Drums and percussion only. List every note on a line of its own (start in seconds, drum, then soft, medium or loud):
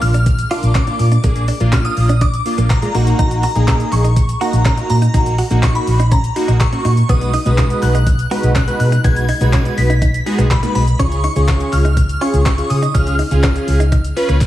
0.02 clap medium
0.02 open hi-hat medium
0.02 shaker medium
0.14 closed hi-hat medium
0.14 shaker medium
0.26 kick loud
0.26 closed hi-hat medium
0.26 shaker medium
0.39 closed hi-hat medium
0.39 shaker medium
0.51 open hi-hat medium
0.51 shaker medium
0.63 closed hi-hat medium
0.63 shaker medium
0.75 kick loud
0.75 snare loud
0.75 clap loud
0.75 clap medium
0.75 closed hi-hat medium
0.75 shaker medium
0.87 closed hi-hat medium
0.87 shaker medium
0.99 open hi-hat medium
0.99 shaker medium
1.12 closed hi-hat medium
1.12 shaker medium
1.24 kick loud
1.24 closed hi-hat medium
1.24 shaker medium
1.36 closed hi-hat medium
1.36 shaker medium
1.48 open hi-hat medium
1.48 shaker medium
1.60 closed hi-hat soft
1.60 shaker medium
1.72 kick loud
1.72 snare medium
1.72 clap loud
1.72 clap medium
1.72 closed hi-hat medium
1.72 shaker medium
1.85 closed hi-hat medium
1.85 shaker soft
1.97 open hi-hat medium
1.97 shaker medium
2.09 closed hi-hat medium
2.09 shaker medium
2.21 kick loud
2.21 closed hi-hat medium
2.21 shaker medium
2.34 closed hi-hat medium
2.34 shaker medium
2.46 open hi-hat medium
2.46 shaker medium
2.58 closed hi-hat medium
2.58 shaker medium
2.70 kick loud
2.70 snare medium
2.70 clap loud
2.70 clap medium
2.70 closed hi-hat medium
2.70 shaker medium
2.82 closed hi-hat medium
2.82 shaker medium
2.95 open hi-hat medium
2.95 shaker medium
3.07 closed hi-hat medium
3.07 shaker medium
3.19 kick loud
3.19 closed hi-hat medium
3.19 shaker medium
3.31 closed hi-hat medium
3.31 shaker medium
3.43 open hi-hat medium
3.43 shaker medium
3.55 closed hi-hat soft
3.55 shaker medium
3.68 kick loud
3.68 snare loud
3.68 clap medium
3.68 clap loud
3.68 closed hi-hat medium
3.68 shaker medium
3.80 closed hi-hat medium
3.80 shaker medium
3.92 clap medium
3.92 open hi-hat medium
3.92 shaker medium
4.05 closed hi-hat medium
4.05 shaker medium
4.16 kick loud
4.16 closed hi-hat medium
4.16 shaker medium
4.29 closed hi-hat medium
4.29 shaker medium
4.41 open hi-hat medium
4.41 shaker medium
4.53 closed hi-hat medium
4.53 shaker medium
4.65 kick loud
4.65 snare medium
4.65 clap medium
4.65 clap loud
4.65 closed hi-hat medium
4.65 shaker medium
4.78 closed hi-hat medium
4.78 shaker medium
4.90 open hi-hat medium
4.90 shaker medium
5.02 closed hi-hat medium
5.02 shaker medium
5.14 kick loud
5.14 closed hi-hat medium
5.14 shaker medium
5.26 closed hi-hat medium
5.26 shaker medium
5.38 open hi-hat medium
5.38 shaker medium
5.51 closed hi-hat medium
5.51 shaker medium
5.63 kick loud
5.63 snare loud
5.63 clap medium
5.63 clap loud
5.63 closed hi-hat medium
5.63 shaker medium
5.75 closed hi-hat medium
5.75 shaker medium
5.87 open hi-hat medium
5.87 shaker medium
6.00 closed hi-hat medium
6.00 shaker medium
6.12 kick loud
6.12 closed hi-hat medium
6.12 shaker medium
6.24 closed hi-hat medium
6.24 shaker medium
6.36 open hi-hat medium
6.36 shaker medium
6.48 closed hi-hat medium
6.48 shaker medium
6.60 kick loud
6.60 snare medium
6.60 clap medium
6.60 clap loud
6.60 closed hi-hat medium
6.60 shaker medium
6.73 closed hi-hat medium
6.73 shaker medium
6.85 open hi-hat medium
6.85 shaker medium
6.97 closed hi-hat medium
6.97 shaker medium
7.09 kick loud
7.09 closed hi-hat medium
7.09 shaker medium
7.21 closed hi-hat medium
7.21 shaker medium
7.33 open hi-hat medium
7.33 shaker medium
7.46 closed hi-hat soft
7.46 shaker medium
7.58 kick loud
7.58 snare loud
7.58 clap medium
7.58 clap loud
7.58 closed hi-hat medium
7.58 shaker medium
7.70 closed hi-hat soft
7.70 shaker soft
7.82 clap medium
7.82 open hi-hat medium
7.82 shaker medium
7.95 closed hi-hat medium
7.95 shaker medium
8.07 kick loud
8.07 closed hi-hat medium
8.07 shaker medium
8.19 closed hi-hat medium
8.19 shaker medium
8.31 open hi-hat medium
8.31 shaker medium
8.43 closed hi-hat medium
8.43 shaker medium
8.56 kick loud
8.56 snare medium
8.56 clap loud
8.56 clap medium
8.56 closed hi-hat medium
8.56 shaker medium
8.68 closed hi-hat medium
8.68 shaker medium
8.80 open hi-hat medium
8.80 shaker medium
8.92 closed hi-hat medium
8.92 shaker medium
9.04 kick loud
9.04 closed hi-hat medium
9.04 shaker medium
9.16 closed hi-hat medium
9.16 shaker medium
9.28 open hi-hat medium
9.28 shaker medium
9.41 closed hi-hat soft
9.41 shaker medium
9.53 kick loud
9.53 snare medium
9.53 clap loud
9.53 clap medium
9.53 closed hi-hat medium
9.53 shaker medium
9.65 closed hi-hat medium
9.65 shaker medium
9.78 open hi-hat medium
9.78 shaker medium
9.90 closed hi-hat medium
9.90 shaker medium
10.02 kick loud
10.02 closed hi-hat medium
10.02 shaker medium
10.14 closed hi-hat medium
10.14 shaker medium
10.26 open hi-hat medium
10.26 shaker medium
10.39 closed hi-hat medium
10.39 shaker medium
10.51 kick loud
10.51 snare medium
10.51 clap medium
10.51 clap loud
10.51 closed hi-hat medium
10.51 shaker medium
10.63 closed hi-hat medium
10.63 shaker medium
10.75 open hi-hat medium
10.75 shaker medium
10.88 closed hi-hat medium
10.88 shaker medium
11.00 kick loud
11.00 closed hi-hat medium
11.00 shaker medium
11.12 closed hi-hat medium
11.12 shaker medium
11.24 open hi-hat medium
11.24 shaker medium
11.36 closed hi-hat medium
11.36 shaker medium
11.48 kick loud
11.48 snare loud
11.48 clap medium
11.48 clap loud
11.48 closed hi-hat medium
11.48 shaker medium
11.60 closed hi-hat medium
11.60 shaker soft
11.73 clap medium
11.73 open hi-hat medium
11.73 shaker medium
11.85 closed hi-hat medium
11.85 shaker medium
11.97 kick loud
11.97 closed hi-hat medium
11.97 shaker medium
12.09 closed hi-hat medium
12.09 shaker medium
12.22 open hi-hat medium
12.22 shaker medium
12.34 closed hi-hat medium
12.34 shaker medium
12.46 kick loud
12.46 snare medium
12.46 clap medium
12.46 clap loud
12.46 closed hi-hat medium
12.46 shaker medium
12.58 closed hi-hat medium
12.58 shaker medium
12.70 open hi-hat medium
12.70 shaker medium
12.83 closed hi-hat medium
12.83 shaker medium
12.95 kick loud
12.95 closed hi-hat medium
12.95 shaker medium
13.07 closed hi-hat medium
13.07 shaker medium
13.19 open hi-hat medium
13.19 shaker medium
13.31 closed hi-hat medium
13.31 shaker medium
13.43 kick loud
13.43 snare loud
13.43 clap medium
13.43 clap loud
13.43 closed hi-hat medium
13.43 shaker medium
13.56 closed hi-hat medium
13.56 shaker medium
13.68 open hi-hat medium
13.68 shaker medium
13.80 closed hi-hat medium
13.80 shaker medium
13.92 kick loud
13.92 closed hi-hat medium
13.92 shaker medium
14.05 closed hi-hat medium
14.05 shaker medium
14.17 open hi-hat medium
14.17 shaker medium
14.29 closed hi-hat medium
14.29 shaker medium
14.41 kick loud
14.41 clap medium
14.41 closed hi-hat medium
14.41 high tom medium
14.41 shaker medium